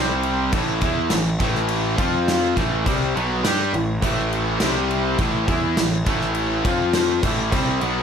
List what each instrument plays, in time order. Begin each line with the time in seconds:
Already playing: picked electric bass C2, overdriven electric guitar C3 G3 C4
0.23 crash
0.52 picked electric bass A1, overdriven electric guitar A2 E3 A3, kick, crash
0.81 picked electric bass E2, overdriven electric guitar E3 B3 E4, kick, crash
1.10 picked electric bass A1, overdriven electric guitar A2 E3, snare, crash
1.39 picked electric bass A1, overdriven electric guitar A2 E3 A3, kick, crash
1.55 snare
1.68 crash
1.98 picked electric bass F2, overdriven electric guitar F3 C4 F4, kick, crash
2.28 snare, crash
2.57 picked electric bass A1, overdriven electric guitar A2 E3 A3, kick, crash
2.86 picked electric bass C2, overdriven electric guitar C3 G3 C4, kick, crash
3.16 picked electric bass B1, overdriven electric guitar B2 F#3 B3, crash
3.43 picked electric bass G2, overdriven electric guitar G3 D4 G4, snare, crash
3.73 picked electric bass A1, overdriven electric guitar A2 E3, crash
4.02 picked electric bass A1, overdriven electric guitar A2 E3 A3, kick, crash
4.33 crash
4.60 picked electric bass C2, overdriven electric guitar C3 G3 C4, snare, crash
4.91 crash
5.18 picked electric bass A1, overdriven electric guitar A2 E3 A3, kick, crash
5.48 picked electric bass E2, overdriven electric guitar E3 B3 E4, kick, crash
5.77 picked electric bass A1, overdriven electric guitar A2 E3, snare, crash
6.06 picked electric bass A1, overdriven electric guitar A2 E3 A3, kick, crash
6.21 snare
6.34 crash
6.65 picked electric bass F2, overdriven electric guitar F3 C4 F4, kick, crash
6.93 snare, crash
7.23 picked electric bass A1, overdriven electric guitar A2 E3 A3, kick, crash
7.52 picked electric bass C2, overdriven electric guitar C3 G3 C4, kick, crash
7.80 picked electric bass B1, overdriven electric guitar B2 F#3 B3, crash